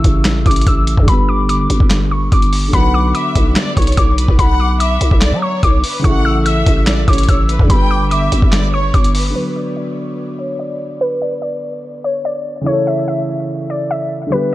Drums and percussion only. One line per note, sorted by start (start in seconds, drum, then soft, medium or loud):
0.04 kick medium
0.04 closed hi-hat medium
0.25 snare loud
0.25 clap medium
0.25 closed hi-hat medium
0.46 kick loud
0.46 closed hi-hat medium
0.51 closed hi-hat medium
0.56 closed hi-hat medium
0.61 closed hi-hat medium
0.67 kick loud
0.67 closed hi-hat medium
0.87 closed hi-hat medium
0.97 kick loud
1.08 kick loud
1.08 closed hi-hat medium
1.49 closed hi-hat medium
1.70 closed hi-hat medium
1.80 kick loud
1.90 snare loud
1.90 clap medium
1.90 closed hi-hat medium
2.32 kick loud
2.32 closed hi-hat medium
2.42 closed hi-hat medium
2.53 open hi-hat medium
2.73 kick loud
2.73 closed hi-hat medium
3.15 closed hi-hat medium
3.35 kick medium
3.35 closed hi-hat medium
3.56 snare loud
3.56 clap medium
3.56 closed hi-hat medium
3.77 kick loud
3.77 closed hi-hat medium
3.82 closed hi-hat medium
3.87 closed hi-hat medium
3.92 closed hi-hat medium
3.97 kick loud
3.97 closed hi-hat medium
4.18 closed hi-hat medium
4.28 kick loud
4.39 kick loud
4.39 closed hi-hat medium
4.80 closed hi-hat medium
5.01 closed hi-hat medium
5.11 kick loud
5.21 snare loud
5.21 clap medium
5.21 closed hi-hat medium
5.63 kick loud
5.63 closed hi-hat medium
5.84 open hi-hat medium
6.04 kick loud
6.04 closed hi-hat medium
6.46 closed hi-hat medium
6.66 kick medium
6.66 closed hi-hat medium
6.87 snare loud
6.87 clap medium
6.87 closed hi-hat medium
7.08 kick loud
7.08 closed hi-hat medium
7.13 closed hi-hat medium
7.18 closed hi-hat medium
7.23 closed hi-hat medium
7.29 kick loud
7.29 closed hi-hat medium
7.49 closed hi-hat medium
7.59 kick loud
7.70 kick loud
7.70 closed hi-hat medium
8.11 closed hi-hat medium
8.32 closed hi-hat medium
8.42 kick loud
8.52 snare loud
8.52 clap medium
8.52 closed hi-hat medium
8.94 kick loud
8.94 closed hi-hat medium
9.04 closed hi-hat medium
9.15 open hi-hat medium